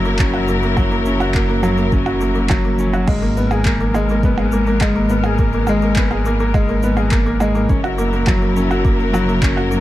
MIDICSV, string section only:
0, 0, Header, 1, 2, 480
1, 0, Start_track
1, 0, Tempo, 576923
1, 644, Time_signature, 4, 2, 24, 8
1, 8155, End_track
2, 0, Start_track
2, 0, Title_t, "String section"
2, 0, Program_c, 0, 48
2, 0, Note_on_c, 0, 54, 72
2, 0, Note_on_c, 0, 64, 70
2, 0, Note_on_c, 0, 70, 85
2, 2529, Note_off_c, 0, 64, 0
2, 2531, Note_off_c, 0, 70, 0
2, 2532, Note_off_c, 0, 54, 0
2, 2568, Note_on_c, 0, 56, 75
2, 2570, Note_on_c, 0, 70, 70
2, 6373, Note_off_c, 0, 56, 0
2, 6374, Note_off_c, 0, 70, 0
2, 6396, Note_on_c, 0, 54, 80
2, 6400, Note_on_c, 0, 70, 87
2, 6401, Note_on_c, 0, 64, 70
2, 8155, Note_off_c, 0, 54, 0
2, 8155, Note_off_c, 0, 64, 0
2, 8155, Note_off_c, 0, 70, 0
2, 8155, End_track
0, 0, End_of_file